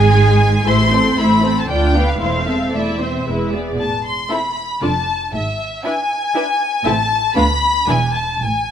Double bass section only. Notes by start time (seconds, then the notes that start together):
Already playing: G#1
0.68 A1
1.18 A1
1.69 D2
2.21 E1
2.73 E1
3.26 E1
3.79 A1
4.82 F1
5.33 G#1
6.86 A1
7.37 D2
7.88 E1
8.41 A1